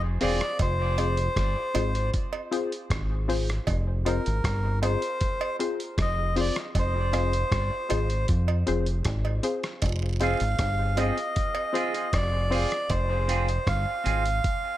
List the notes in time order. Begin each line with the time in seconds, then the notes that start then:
Already playing: F1
0.21 E1 C4 F4 G#4 C5 D5, open hi-hat
0.41 cross-stick, closed hi-hat
0.59 F1 C5, kick, closed hi-hat, cowbell
0.98 C4 F4 G#4 C5, closed hi-hat, cowbell
1.17 closed hi-hat
1.36 G1, kick, cross-stick, closed hi-hat
1.74 G#1 C4 F4 G#4 C5, closed hi-hat, cowbell
1.95 closed hi-hat
2.14 kick, closed hi-hat
2.33 cowbell
2.51 C4 F4 G#4 C5, closed hi-hat
2.72 closed hi-hat
2.90 G#1, kick, cross-stick, closed hi-hat
3.28 C4 F4 G#4 C5, open hi-hat
3.49 cross-stick, closed hi-hat
3.67 F1, kick, closed hi-hat, cowbell
4.05 C4 F4 G#4 A#4 C5, closed hi-hat, cowbell
4.26 G#1, closed hi-hat
4.44 G1, kick, cross-stick, closed hi-hat
4.82 C4 F4 G#4 C5, closed hi-hat, cowbell
5.02 closed hi-hat
5.21 kick, closed hi-hat
5.41 cowbell
5.59 C4 F4 G#4 C5, closed hi-hat
5.80 closed hi-hat
5.98 F1 D#5, kick, cross-stick, closed hi-hat
6.36 C4 F4 G#4 C5, open hi-hat
6.40 D5
6.56 cross-stick, closed hi-hat
6.75 F1 C5, kick, closed hi-hat, cowbell
7.13 C4 F4 G#4 C5, cross-stick, closed hi-hat, cowbell
7.33 closed hi-hat
7.52 G1, kick, cross-stick, closed hi-hat
7.89 G#1 C4 F4 G#4 C5, closed hi-hat, cowbell
8.10 closed hi-hat
8.28 F2, kick, closed hi-hat
8.48 cowbell
8.67 F1 C4 F4 G#4 C5, closed hi-hat
8.86 closed hi-hat
9.05 G#1, kick, cross-stick, closed hi-hat
9.25 cowbell
9.43 C4 F4 G#4 C5, closed hi-hat
9.63 cross-stick, closed hi-hat
9.82 F1, kick, closed hi-hat, cowbell, vibraslap
10.20 C4 F4 G#4 C5 F5, closed hi-hat, cowbell
10.40 G#1, closed hi-hat
10.59 G1, kick, cross-stick, closed hi-hat
10.97 C4 F4 G#4 C5 D#5, closed hi-hat, cowbell
11.18 closed hi-hat
11.36 kick, closed hi-hat
11.55 cowbell
11.73 C4 F4 G#4 C5, closed hi-hat
11.94 C4 F4 G#4, closed hi-hat
12.13 F1 D5, kick, cross-stick, closed hi-hat
12.50 C4 F4 G#4 C5, open hi-hat
12.72 cross-stick, closed hi-hat
12.90 F1 C5, kick, closed hi-hat, cowbell
13.28 C4 F4 G#4, closed hi-hat
13.48 closed hi-hat
13.67 G1 F5, kick, cross-stick, closed hi-hat
14.04 G#1 C4 F4 G#4, closed hi-hat
14.26 closed hi-hat
14.44 kick, closed hi-hat